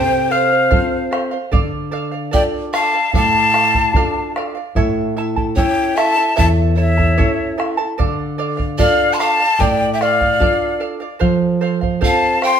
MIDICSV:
0, 0, Header, 1, 6, 480
1, 0, Start_track
1, 0, Key_signature, -1, "minor"
1, 0, Tempo, 807537
1, 907, Time_signature, 4, 2, 24, 8
1, 7488, End_track
2, 0, Start_track
2, 0, Title_t, "Quena"
2, 0, Program_c, 0, 77
2, 0, Note_on_c, 0, 79, 119
2, 187, Note_on_c, 0, 77, 93
2, 196, Note_off_c, 0, 79, 0
2, 667, Note_off_c, 0, 77, 0
2, 1391, Note_on_c, 0, 79, 94
2, 1445, Note_off_c, 0, 79, 0
2, 1637, Note_on_c, 0, 81, 100
2, 1856, Note_off_c, 0, 81, 0
2, 1876, Note_on_c, 0, 81, 116
2, 2569, Note_off_c, 0, 81, 0
2, 3309, Note_on_c, 0, 79, 100
2, 3549, Note_on_c, 0, 81, 110
2, 3558, Note_off_c, 0, 79, 0
2, 3789, Note_off_c, 0, 81, 0
2, 3793, Note_on_c, 0, 81, 113
2, 3847, Note_off_c, 0, 81, 0
2, 4044, Note_on_c, 0, 76, 90
2, 4493, Note_off_c, 0, 76, 0
2, 5224, Note_on_c, 0, 77, 95
2, 5431, Note_on_c, 0, 84, 80
2, 5440, Note_off_c, 0, 77, 0
2, 5469, Note_on_c, 0, 81, 108
2, 5478, Note_off_c, 0, 84, 0
2, 5706, Note_on_c, 0, 79, 113
2, 5715, Note_off_c, 0, 81, 0
2, 5901, Note_off_c, 0, 79, 0
2, 5905, Note_on_c, 0, 79, 65
2, 5956, Note_on_c, 0, 77, 93
2, 5965, Note_off_c, 0, 79, 0
2, 6433, Note_off_c, 0, 77, 0
2, 7167, Note_on_c, 0, 81, 97
2, 7383, Note_off_c, 0, 81, 0
2, 7402, Note_on_c, 0, 84, 109
2, 7488, Note_off_c, 0, 84, 0
2, 7488, End_track
3, 0, Start_track
3, 0, Title_t, "Pan flute"
3, 0, Program_c, 1, 75
3, 0, Note_on_c, 1, 72, 83
3, 188, Note_off_c, 1, 72, 0
3, 188, Note_on_c, 1, 72, 73
3, 668, Note_off_c, 1, 72, 0
3, 1385, Note_on_c, 1, 74, 88
3, 1439, Note_off_c, 1, 74, 0
3, 1625, Note_on_c, 1, 77, 84
3, 1850, Note_off_c, 1, 77, 0
3, 1867, Note_on_c, 1, 77, 91
3, 2564, Note_off_c, 1, 77, 0
3, 3302, Note_on_c, 1, 73, 83
3, 3540, Note_on_c, 1, 76, 88
3, 3549, Note_off_c, 1, 73, 0
3, 3777, Note_off_c, 1, 76, 0
3, 3781, Note_on_c, 1, 76, 90
3, 3836, Note_off_c, 1, 76, 0
3, 4016, Note_on_c, 1, 73, 70
3, 4479, Note_off_c, 1, 73, 0
3, 5219, Note_on_c, 1, 74, 86
3, 5421, Note_on_c, 1, 81, 70
3, 5430, Note_off_c, 1, 74, 0
3, 5464, Note_on_c, 1, 77, 90
3, 5473, Note_off_c, 1, 81, 0
3, 5706, Note_on_c, 1, 74, 84
3, 5715, Note_off_c, 1, 77, 0
3, 5901, Note_off_c, 1, 74, 0
3, 5905, Note_on_c, 1, 76, 56
3, 5949, Note_on_c, 1, 74, 75
3, 5958, Note_off_c, 1, 76, 0
3, 6430, Note_off_c, 1, 74, 0
3, 7158, Note_on_c, 1, 77, 91
3, 7378, Note_off_c, 1, 77, 0
3, 7388, Note_on_c, 1, 79, 91
3, 7488, Note_off_c, 1, 79, 0
3, 7488, End_track
4, 0, Start_track
4, 0, Title_t, "Charango"
4, 0, Program_c, 2, 24
4, 0, Note_on_c, 2, 69, 83
4, 0, Note_on_c, 2, 72, 89
4, 0, Note_on_c, 2, 77, 88
4, 172, Note_off_c, 2, 69, 0
4, 179, Note_on_c, 2, 69, 69
4, 180, Note_off_c, 2, 72, 0
4, 185, Note_off_c, 2, 77, 0
4, 187, Note_on_c, 2, 72, 68
4, 192, Note_on_c, 2, 77, 75
4, 295, Note_off_c, 2, 77, 0
4, 302, Note_off_c, 2, 72, 0
4, 302, Note_on_c, 2, 77, 64
4, 303, Note_off_c, 2, 69, 0
4, 309, Note_on_c, 2, 72, 50
4, 413, Note_off_c, 2, 72, 0
4, 415, Note_off_c, 2, 77, 0
4, 419, Note_on_c, 2, 69, 80
4, 420, Note_on_c, 2, 72, 82
4, 422, Note_on_c, 2, 77, 88
4, 653, Note_off_c, 2, 69, 0
4, 659, Note_off_c, 2, 72, 0
4, 660, Note_on_c, 2, 69, 59
4, 663, Note_off_c, 2, 77, 0
4, 666, Note_on_c, 2, 72, 62
4, 670, Note_on_c, 2, 77, 63
4, 773, Note_off_c, 2, 77, 0
4, 780, Note_on_c, 2, 77, 68
4, 782, Note_off_c, 2, 72, 0
4, 784, Note_off_c, 2, 69, 0
4, 789, Note_on_c, 2, 72, 53
4, 901, Note_off_c, 2, 77, 0
4, 901, Note_on_c, 2, 69, 82
4, 906, Note_on_c, 2, 74, 98
4, 908, Note_off_c, 2, 72, 0
4, 908, Note_on_c, 2, 77, 96
4, 1131, Note_off_c, 2, 69, 0
4, 1134, Note_off_c, 2, 74, 0
4, 1138, Note_on_c, 2, 69, 73
4, 1140, Note_off_c, 2, 77, 0
4, 1141, Note_on_c, 2, 74, 78
4, 1147, Note_on_c, 2, 77, 82
4, 1250, Note_off_c, 2, 77, 0
4, 1258, Note_on_c, 2, 77, 57
4, 1263, Note_off_c, 2, 69, 0
4, 1263, Note_off_c, 2, 74, 0
4, 1270, Note_on_c, 2, 74, 46
4, 1374, Note_off_c, 2, 74, 0
4, 1375, Note_on_c, 2, 69, 66
4, 1377, Note_off_c, 2, 77, 0
4, 1381, Note_on_c, 2, 74, 70
4, 1384, Note_on_c, 2, 77, 75
4, 1615, Note_off_c, 2, 69, 0
4, 1619, Note_off_c, 2, 74, 0
4, 1622, Note_on_c, 2, 69, 56
4, 1626, Note_off_c, 2, 77, 0
4, 1626, Note_on_c, 2, 74, 62
4, 1632, Note_on_c, 2, 77, 75
4, 1741, Note_off_c, 2, 77, 0
4, 1745, Note_off_c, 2, 69, 0
4, 1747, Note_off_c, 2, 74, 0
4, 1749, Note_on_c, 2, 77, 50
4, 1754, Note_on_c, 2, 74, 42
4, 1864, Note_off_c, 2, 74, 0
4, 1864, Note_on_c, 2, 69, 79
4, 1866, Note_off_c, 2, 77, 0
4, 1872, Note_on_c, 2, 74, 82
4, 1873, Note_on_c, 2, 77, 88
4, 2094, Note_off_c, 2, 69, 0
4, 2099, Note_off_c, 2, 74, 0
4, 2101, Note_on_c, 2, 69, 63
4, 2102, Note_off_c, 2, 77, 0
4, 2107, Note_on_c, 2, 74, 67
4, 2109, Note_on_c, 2, 77, 70
4, 2225, Note_off_c, 2, 69, 0
4, 2225, Note_off_c, 2, 77, 0
4, 2228, Note_off_c, 2, 74, 0
4, 2232, Note_on_c, 2, 77, 59
4, 2237, Note_on_c, 2, 74, 47
4, 2347, Note_off_c, 2, 74, 0
4, 2349, Note_off_c, 2, 77, 0
4, 2350, Note_on_c, 2, 69, 81
4, 2354, Note_on_c, 2, 74, 84
4, 2356, Note_on_c, 2, 77, 98
4, 2587, Note_off_c, 2, 69, 0
4, 2590, Note_off_c, 2, 74, 0
4, 2592, Note_off_c, 2, 77, 0
4, 2594, Note_on_c, 2, 69, 64
4, 2597, Note_on_c, 2, 74, 64
4, 2603, Note_on_c, 2, 77, 63
4, 2696, Note_off_c, 2, 77, 0
4, 2703, Note_on_c, 2, 77, 59
4, 2708, Note_off_c, 2, 74, 0
4, 2711, Note_off_c, 2, 69, 0
4, 2715, Note_on_c, 2, 74, 51
4, 2826, Note_off_c, 2, 77, 0
4, 2829, Note_off_c, 2, 74, 0
4, 2830, Note_on_c, 2, 76, 89
4, 2831, Note_on_c, 2, 73, 77
4, 2834, Note_on_c, 2, 69, 93
4, 2835, Note_on_c, 2, 64, 89
4, 2835, Note_on_c, 2, 81, 84
4, 3064, Note_off_c, 2, 76, 0
4, 3065, Note_off_c, 2, 64, 0
4, 3070, Note_off_c, 2, 73, 0
4, 3071, Note_off_c, 2, 69, 0
4, 3071, Note_on_c, 2, 76, 67
4, 3072, Note_off_c, 2, 81, 0
4, 3073, Note_on_c, 2, 64, 68
4, 3078, Note_on_c, 2, 69, 78
4, 3080, Note_on_c, 2, 81, 79
4, 3181, Note_off_c, 2, 81, 0
4, 3185, Note_off_c, 2, 69, 0
4, 3186, Note_off_c, 2, 76, 0
4, 3188, Note_on_c, 2, 81, 57
4, 3189, Note_off_c, 2, 64, 0
4, 3193, Note_on_c, 2, 69, 56
4, 3196, Note_on_c, 2, 64, 47
4, 3309, Note_off_c, 2, 81, 0
4, 3310, Note_off_c, 2, 64, 0
4, 3311, Note_off_c, 2, 69, 0
4, 3312, Note_on_c, 2, 73, 68
4, 3316, Note_on_c, 2, 76, 78
4, 3317, Note_on_c, 2, 64, 81
4, 3318, Note_on_c, 2, 69, 78
4, 3319, Note_on_c, 2, 81, 83
4, 3539, Note_off_c, 2, 76, 0
4, 3541, Note_off_c, 2, 64, 0
4, 3547, Note_on_c, 2, 76, 54
4, 3548, Note_off_c, 2, 69, 0
4, 3548, Note_on_c, 2, 64, 66
4, 3549, Note_off_c, 2, 81, 0
4, 3551, Note_off_c, 2, 73, 0
4, 3555, Note_on_c, 2, 69, 66
4, 3556, Note_on_c, 2, 81, 73
4, 3656, Note_off_c, 2, 81, 0
4, 3661, Note_off_c, 2, 76, 0
4, 3662, Note_off_c, 2, 69, 0
4, 3664, Note_off_c, 2, 64, 0
4, 3664, Note_on_c, 2, 81, 53
4, 3670, Note_on_c, 2, 69, 44
4, 3671, Note_on_c, 2, 64, 41
4, 3777, Note_off_c, 2, 64, 0
4, 3777, Note_off_c, 2, 69, 0
4, 3778, Note_off_c, 2, 81, 0
4, 3780, Note_on_c, 2, 73, 82
4, 3784, Note_on_c, 2, 64, 90
4, 3784, Note_on_c, 2, 69, 90
4, 3784, Note_on_c, 2, 76, 82
4, 3786, Note_on_c, 2, 81, 92
4, 4014, Note_off_c, 2, 76, 0
4, 4018, Note_off_c, 2, 64, 0
4, 4020, Note_off_c, 2, 69, 0
4, 4021, Note_on_c, 2, 76, 64
4, 4022, Note_off_c, 2, 81, 0
4, 4025, Note_off_c, 2, 73, 0
4, 4025, Note_on_c, 2, 64, 61
4, 4027, Note_on_c, 2, 69, 63
4, 4029, Note_on_c, 2, 81, 64
4, 4138, Note_off_c, 2, 81, 0
4, 4143, Note_off_c, 2, 69, 0
4, 4143, Note_off_c, 2, 76, 0
4, 4145, Note_off_c, 2, 64, 0
4, 4145, Note_on_c, 2, 81, 53
4, 4150, Note_on_c, 2, 69, 56
4, 4153, Note_on_c, 2, 64, 49
4, 4261, Note_off_c, 2, 64, 0
4, 4263, Note_off_c, 2, 81, 0
4, 4264, Note_off_c, 2, 69, 0
4, 4266, Note_on_c, 2, 73, 78
4, 4266, Note_on_c, 2, 76, 82
4, 4268, Note_on_c, 2, 64, 85
4, 4270, Note_on_c, 2, 81, 83
4, 4271, Note_on_c, 2, 69, 89
4, 4496, Note_off_c, 2, 64, 0
4, 4496, Note_off_c, 2, 76, 0
4, 4499, Note_off_c, 2, 69, 0
4, 4500, Note_off_c, 2, 81, 0
4, 4503, Note_on_c, 2, 64, 62
4, 4504, Note_on_c, 2, 76, 62
4, 4506, Note_on_c, 2, 69, 61
4, 4507, Note_on_c, 2, 81, 62
4, 4508, Note_off_c, 2, 73, 0
4, 4613, Note_off_c, 2, 81, 0
4, 4617, Note_off_c, 2, 69, 0
4, 4618, Note_off_c, 2, 76, 0
4, 4620, Note_off_c, 2, 64, 0
4, 4620, Note_on_c, 2, 81, 71
4, 4624, Note_on_c, 2, 69, 57
4, 4627, Note_on_c, 2, 64, 51
4, 4735, Note_off_c, 2, 69, 0
4, 4740, Note_off_c, 2, 64, 0
4, 4743, Note_on_c, 2, 69, 86
4, 4745, Note_off_c, 2, 81, 0
4, 4747, Note_on_c, 2, 74, 95
4, 4751, Note_on_c, 2, 77, 88
4, 4975, Note_off_c, 2, 69, 0
4, 4978, Note_off_c, 2, 74, 0
4, 4982, Note_on_c, 2, 69, 78
4, 4983, Note_off_c, 2, 77, 0
4, 4986, Note_on_c, 2, 74, 82
4, 4990, Note_on_c, 2, 77, 72
4, 5088, Note_off_c, 2, 77, 0
4, 5095, Note_on_c, 2, 77, 63
4, 5096, Note_off_c, 2, 74, 0
4, 5103, Note_on_c, 2, 74, 43
4, 5106, Note_off_c, 2, 69, 0
4, 5215, Note_off_c, 2, 74, 0
4, 5220, Note_off_c, 2, 77, 0
4, 5221, Note_on_c, 2, 69, 70
4, 5222, Note_on_c, 2, 74, 77
4, 5228, Note_on_c, 2, 77, 85
4, 5455, Note_off_c, 2, 69, 0
4, 5462, Note_off_c, 2, 74, 0
4, 5463, Note_on_c, 2, 69, 69
4, 5465, Note_off_c, 2, 77, 0
4, 5469, Note_on_c, 2, 74, 62
4, 5472, Note_on_c, 2, 77, 72
4, 5577, Note_off_c, 2, 77, 0
4, 5584, Note_on_c, 2, 77, 51
4, 5586, Note_off_c, 2, 69, 0
4, 5587, Note_off_c, 2, 74, 0
4, 5594, Note_on_c, 2, 74, 43
4, 5699, Note_off_c, 2, 74, 0
4, 5703, Note_off_c, 2, 77, 0
4, 5704, Note_on_c, 2, 69, 83
4, 5706, Note_on_c, 2, 74, 90
4, 5710, Note_on_c, 2, 77, 90
4, 5940, Note_off_c, 2, 69, 0
4, 5947, Note_on_c, 2, 69, 64
4, 5948, Note_off_c, 2, 74, 0
4, 5950, Note_off_c, 2, 77, 0
4, 5956, Note_on_c, 2, 74, 77
4, 5958, Note_on_c, 2, 77, 74
4, 6060, Note_off_c, 2, 77, 0
4, 6067, Note_on_c, 2, 77, 63
4, 6068, Note_off_c, 2, 74, 0
4, 6069, Note_off_c, 2, 69, 0
4, 6075, Note_on_c, 2, 74, 53
4, 6182, Note_on_c, 2, 69, 86
4, 6184, Note_off_c, 2, 74, 0
4, 6184, Note_off_c, 2, 77, 0
4, 6191, Note_on_c, 2, 74, 86
4, 6191, Note_on_c, 2, 77, 93
4, 6413, Note_off_c, 2, 69, 0
4, 6415, Note_off_c, 2, 74, 0
4, 6417, Note_off_c, 2, 77, 0
4, 6420, Note_on_c, 2, 69, 60
4, 6422, Note_on_c, 2, 74, 60
4, 6424, Note_on_c, 2, 77, 73
4, 6531, Note_off_c, 2, 77, 0
4, 6539, Note_on_c, 2, 77, 64
4, 6540, Note_off_c, 2, 74, 0
4, 6545, Note_off_c, 2, 69, 0
4, 6547, Note_on_c, 2, 74, 50
4, 6654, Note_off_c, 2, 77, 0
4, 6654, Note_on_c, 2, 69, 84
4, 6655, Note_off_c, 2, 74, 0
4, 6658, Note_on_c, 2, 72, 88
4, 6661, Note_on_c, 2, 77, 95
4, 6893, Note_off_c, 2, 69, 0
4, 6896, Note_off_c, 2, 72, 0
4, 6900, Note_on_c, 2, 69, 70
4, 6903, Note_off_c, 2, 77, 0
4, 6903, Note_on_c, 2, 72, 77
4, 6910, Note_on_c, 2, 77, 80
4, 7014, Note_off_c, 2, 77, 0
4, 7021, Note_on_c, 2, 77, 60
4, 7024, Note_off_c, 2, 72, 0
4, 7025, Note_off_c, 2, 69, 0
4, 7031, Note_on_c, 2, 72, 47
4, 7134, Note_off_c, 2, 72, 0
4, 7136, Note_off_c, 2, 77, 0
4, 7138, Note_on_c, 2, 69, 78
4, 7141, Note_on_c, 2, 72, 76
4, 7143, Note_on_c, 2, 77, 88
4, 7372, Note_off_c, 2, 69, 0
4, 7376, Note_off_c, 2, 72, 0
4, 7379, Note_on_c, 2, 69, 59
4, 7383, Note_off_c, 2, 77, 0
4, 7383, Note_on_c, 2, 72, 63
4, 7390, Note_on_c, 2, 77, 65
4, 7488, Note_off_c, 2, 69, 0
4, 7488, Note_off_c, 2, 72, 0
4, 7488, Note_off_c, 2, 77, 0
4, 7488, End_track
5, 0, Start_track
5, 0, Title_t, "Nylon-string guitar"
5, 0, Program_c, 3, 24
5, 0, Note_on_c, 3, 48, 74
5, 415, Note_off_c, 3, 48, 0
5, 427, Note_on_c, 3, 60, 55
5, 429, Note_on_c, 3, 65, 47
5, 433, Note_on_c, 3, 69, 56
5, 812, Note_off_c, 3, 60, 0
5, 812, Note_off_c, 3, 65, 0
5, 815, Note_off_c, 3, 69, 0
5, 901, Note_on_c, 3, 50, 80
5, 1370, Note_off_c, 3, 50, 0
5, 1387, Note_on_c, 3, 65, 44
5, 1389, Note_on_c, 3, 62, 51
5, 1393, Note_on_c, 3, 69, 56
5, 1772, Note_off_c, 3, 65, 0
5, 1773, Note_off_c, 3, 62, 0
5, 1774, Note_off_c, 3, 69, 0
5, 1868, Note_on_c, 3, 45, 75
5, 2334, Note_off_c, 3, 45, 0
5, 2346, Note_on_c, 3, 62, 48
5, 2351, Note_on_c, 3, 65, 45
5, 2352, Note_on_c, 3, 69, 52
5, 2731, Note_off_c, 3, 62, 0
5, 2734, Note_off_c, 3, 65, 0
5, 2734, Note_off_c, 3, 69, 0
5, 2825, Note_on_c, 3, 45, 75
5, 3293, Note_off_c, 3, 45, 0
5, 3308, Note_on_c, 3, 61, 51
5, 3312, Note_on_c, 3, 64, 45
5, 3314, Note_on_c, 3, 69, 54
5, 3692, Note_off_c, 3, 61, 0
5, 3695, Note_off_c, 3, 64, 0
5, 3695, Note_off_c, 3, 69, 0
5, 3791, Note_on_c, 3, 40, 72
5, 4256, Note_off_c, 3, 40, 0
5, 4267, Note_on_c, 3, 61, 54
5, 4271, Note_on_c, 3, 64, 47
5, 4276, Note_on_c, 3, 69, 56
5, 4652, Note_off_c, 3, 61, 0
5, 4655, Note_off_c, 3, 64, 0
5, 4658, Note_off_c, 3, 69, 0
5, 4751, Note_on_c, 3, 50, 81
5, 5216, Note_off_c, 3, 50, 0
5, 5224, Note_on_c, 3, 62, 46
5, 5228, Note_on_c, 3, 65, 45
5, 5229, Note_on_c, 3, 69, 58
5, 5611, Note_off_c, 3, 62, 0
5, 5612, Note_off_c, 3, 65, 0
5, 5612, Note_off_c, 3, 69, 0
5, 5700, Note_on_c, 3, 45, 73
5, 6170, Note_off_c, 3, 45, 0
5, 6180, Note_on_c, 3, 62, 50
5, 6184, Note_on_c, 3, 65, 49
5, 6186, Note_on_c, 3, 69, 55
5, 6568, Note_off_c, 3, 62, 0
5, 6570, Note_off_c, 3, 65, 0
5, 6572, Note_off_c, 3, 69, 0
5, 6663, Note_on_c, 3, 53, 79
5, 7132, Note_off_c, 3, 53, 0
5, 7147, Note_on_c, 3, 60, 52
5, 7148, Note_on_c, 3, 65, 47
5, 7148, Note_on_c, 3, 69, 55
5, 7488, Note_off_c, 3, 60, 0
5, 7488, Note_off_c, 3, 65, 0
5, 7488, Note_off_c, 3, 69, 0
5, 7488, End_track
6, 0, Start_track
6, 0, Title_t, "Bombo"
6, 426, Note_on_c, 9, 43, 96
6, 485, Note_off_c, 9, 43, 0
6, 670, Note_on_c, 9, 37, 64
6, 729, Note_off_c, 9, 37, 0
6, 909, Note_on_c, 9, 43, 87
6, 969, Note_off_c, 9, 43, 0
6, 1390, Note_on_c, 9, 43, 82
6, 1449, Note_off_c, 9, 43, 0
6, 1627, Note_on_c, 9, 37, 65
6, 1686, Note_off_c, 9, 37, 0
6, 1864, Note_on_c, 9, 43, 81
6, 1923, Note_off_c, 9, 43, 0
6, 2104, Note_on_c, 9, 37, 55
6, 2164, Note_off_c, 9, 37, 0
6, 2226, Note_on_c, 9, 43, 66
6, 2285, Note_off_c, 9, 43, 0
6, 2342, Note_on_c, 9, 43, 88
6, 2402, Note_off_c, 9, 43, 0
6, 2592, Note_on_c, 9, 37, 60
6, 2651, Note_off_c, 9, 37, 0
6, 2831, Note_on_c, 9, 43, 74
6, 2890, Note_off_c, 9, 43, 0
6, 3191, Note_on_c, 9, 43, 57
6, 3250, Note_off_c, 9, 43, 0
6, 3309, Note_on_c, 9, 43, 74
6, 3369, Note_off_c, 9, 43, 0
6, 3552, Note_on_c, 9, 37, 64
6, 3611, Note_off_c, 9, 37, 0
6, 3794, Note_on_c, 9, 43, 77
6, 3854, Note_off_c, 9, 43, 0
6, 4155, Note_on_c, 9, 43, 64
6, 4215, Note_off_c, 9, 43, 0
6, 4277, Note_on_c, 9, 43, 85
6, 4337, Note_off_c, 9, 43, 0
6, 4516, Note_on_c, 9, 37, 65
6, 4575, Note_off_c, 9, 37, 0
6, 4751, Note_on_c, 9, 43, 76
6, 4811, Note_off_c, 9, 43, 0
6, 5107, Note_on_c, 9, 43, 58
6, 5166, Note_off_c, 9, 43, 0
6, 5227, Note_on_c, 9, 43, 78
6, 5286, Note_off_c, 9, 43, 0
6, 5469, Note_on_c, 9, 37, 59
6, 5529, Note_off_c, 9, 37, 0
6, 5712, Note_on_c, 9, 43, 77
6, 5771, Note_off_c, 9, 43, 0
6, 5950, Note_on_c, 9, 37, 54
6, 6009, Note_off_c, 9, 37, 0
6, 6069, Note_on_c, 9, 43, 56
6, 6129, Note_off_c, 9, 43, 0
6, 6188, Note_on_c, 9, 43, 78
6, 6247, Note_off_c, 9, 43, 0
6, 6667, Note_on_c, 9, 43, 66
6, 6726, Note_off_c, 9, 43, 0
6, 7029, Note_on_c, 9, 43, 57
6, 7088, Note_off_c, 9, 43, 0
6, 7145, Note_on_c, 9, 43, 74
6, 7205, Note_off_c, 9, 43, 0
6, 7383, Note_on_c, 9, 37, 56
6, 7443, Note_off_c, 9, 37, 0
6, 7488, End_track
0, 0, End_of_file